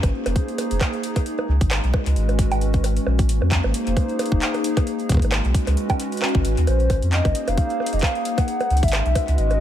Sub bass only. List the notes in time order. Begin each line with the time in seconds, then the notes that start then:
0.03 G#1
0.26 F1
0.71 F1
1.49 C#2
1.61 G#1
1.84 B1
2.06 C#2
2.16 G#1
3.06 A#1
3.29 G#1
3.42 F2
3.64 G#1
3.87 F1
4.32 F1
5.09 C#2
5.22 G#1
5.45 B1
5.67 C#2
6.35 G#1
6.45 G#1
6.57 D#2
6.67 A#1
6.90 G#1
7.03 F2
7.25 G#1
7.48 F1
7.93 F1
8.70 C#2
8.83 G#1
9.06 B1
9.28 C#2
9.38 G#1